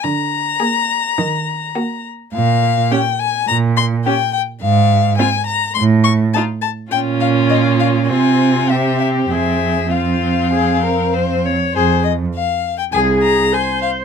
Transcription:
<<
  \new Staff \with { instrumentName = "Violin" } { \time 4/4 \key ees \dorian \tempo 4 = 103 bes''2.~ bes''8 r8 | \key f \minor f''4 g''8 aes''8 bes''8 c'''8 g''8 g''8 | f''4 aes''8 bes''8 c'''8 des'''8 a''8 a''8 | g''8 f''8 ees''8 f''8 aes''4 e''8 e''8 |
e''4 f''2~ f''8 r8 | c''8 ees''8 f''8. g''16 aes''8 bes''8 aes''8 f''8 | }
  \new Staff \with { instrumentName = "Violin" } { \time 4/4 \key ees \dorian r4 aes'4 r4 ges'4 | \key f \minor r4 g'4 r4 g'4 | r4 f'4 r4 f'4 | f'2 f'4 g'4 |
aes'4 f'4 aes'8 bes'8 c''8 des''8 | aes'8 r4. aes'8 r4. | }
  \new Staff \with { instrumentName = "Viola" } { \time 4/4 \key ees \dorian r4 bes4 r4 bes4 | \key f \minor r4 des'4 r4 des'4 | r4 c'4 r4 ees'4 | des'2 c'4 c'4 |
c'4 c'2~ c'8 r8 | r2 aes'4 c''4 | }
  \new Staff \with { instrumentName = "Cello" } { \clef bass \time 4/4 \key ees \dorian d4 r4 ees4 r4 | \key f \minor bes,4 r4 bes,4 r4 | aes,4 r4 a,4 r4 | bes,2 c2 |
f,2.~ f,8 r8 | f,4 r4 c,4 r4 | }
>>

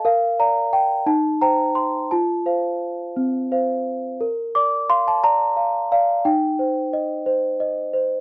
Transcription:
\new Staff \with { instrumentName = "Celesta" } { \time 6/8 \key bes \major \tempo 4. = 59 << { f''8 bes''8 g''8 a''8 bes''8 c'''8 | a''4. r4. | r8 d'''8 c'''16 a''16 bes''4 f''8 | g''2~ g''8 r8 | } \\ { bes'8 <d'' f''>4 ees'8 <c'' g''>4 | f'8 <c'' f''>4 c'8 <c'' f''>4 | bes'8 d''8 f''8 d''8 f''8 d''8 | ees'8 c''8 ees''8 c''8 ees''8 c''8 | } >> }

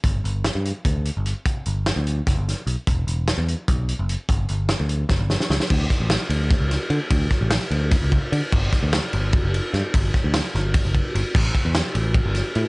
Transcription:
<<
  \new Staff \with { instrumentName = "Picked electric bass" } { \clef bass \time 7/8 \key g \lydian \tempo 4 = 149 g,,8 g,,8. g,8 r16 d,8. g,,8 r16 | r8 g,,8. d,8. fis,,16 g,,8 r16 b,,16 r16 | e,,8 e,,8. e,8 r16 b,,8. fis,,8 r16 | g,,8 g,,8. d,8. fis,,16 g,,8 r16 cis,16 r16 |
d,8 r16 a,,8 r16 d,8. cis,8 r16 d16 r16 | d,8 r16 a,,8 r16 d,8. cis,8 r16 d16 r16 | g,,8 r16 d,8 r16 g,,8. fis,,8 r16 g,16 r16 | g,,8 r16 d,8 r16 g,,8. fis,,8 r16 g,,16 r16 |
a,,8 r16 e,8 r16 a,,8. g,,8 r16 a,16 r16 | }
  \new DrumStaff \with { instrumentName = "Drums" } \drummode { \time 7/8 <hh bd>8 hh8 <hh sn>8 hh8 <hh bd>8 hh8 hh8 | <hh bd>8 hh8 <hh sn>8 hh8 <hh bd sn>8 <hh sn>8 hh8 | <hh bd>8 hh8 <hh sn>8 hh8 <hh bd>8 hh8 hh8 | <hh bd>8 hh8 <hh sn>8 hh8 <bd sn>8 sn16 sn16 sn16 sn16 |
<cymc bd>8 <bd cymr sn>8 <cymr sn>8 cymr8 <bd cymr sn>8 <cymr sn>8 cymr8 | <bd cymr>8 <bd cymr sn>8 <cymr sn>8 cymr8 <bd cymr sn>8 <bd cymr>8 cymr8 | <cymc bd>8 <bd cymr sn>8 <cymr sn>8 cymr8 <bd cymr>8 cymr8 <cymr sn>8 | <bd cymr>8 <bd cymr sn>8 <cymr sn>8 <cymr sn>8 <bd cymr>8 <bd cymr>8 cymr8 |
<cymc bd>8 <bd cymr>8 <cymr sn>8 cymr8 <bd cymr>8 <cymr sn>8 cymr8 | }
>>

